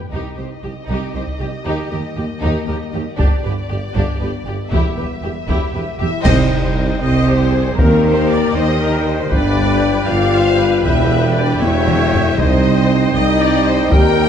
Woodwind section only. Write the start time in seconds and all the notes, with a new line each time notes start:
6.23 G3 G4 C5 G5
7.78 A#4
9.31 B4
12.37 G3 G4 C5 G5
13.91 A#4